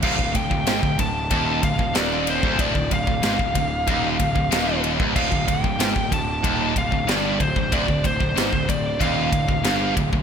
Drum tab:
CC |x---------------|----------------|x---------------|----------------|
RD |--x-x-x-x-x-x-x-|x-x-x-x-x-x-x-x-|--x-x-x-x-x-x-x-|x-x-x-x-x-x-x-x-|
SD |----o-------o---|----o-------o---|----o-------o---|----o-------o---|
BD |oooo-oo-o-oo---o|oooo-oo-o-oo---o|oooo-oo-o-oo--oo|oooo-oo-o-oo--oo|